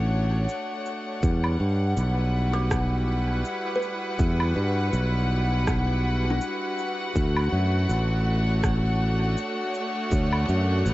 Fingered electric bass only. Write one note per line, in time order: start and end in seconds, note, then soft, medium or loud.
0.00 0.46 A1 medium
1.23 1.56 E2 loud
1.60 1.93 G2 medium
1.97 3.42 B1 medium
4.19 4.52 E2 loud
4.56 4.89 G2 medium
4.93 6.38 B1 medium
7.16 7.49 D2 loud
7.52 7.86 F#2 medium
7.89 9.34 A1 medium
10.12 10.45 D2 loud
10.49 10.82 F#2 medium
10.86 10.94 A1 loud